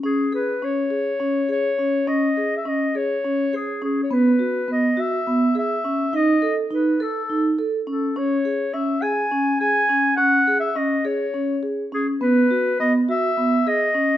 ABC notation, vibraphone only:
X:1
M:7/8
L:1/8
Q:1/4=104
K:C#m
V:1 name="Vibraphone"
C G C G C G C | C G C G C G C | B, F B, F B, G C | D A D A D A C |
C G C G C G C | C G C G C G C | B, F B, F B, G C |]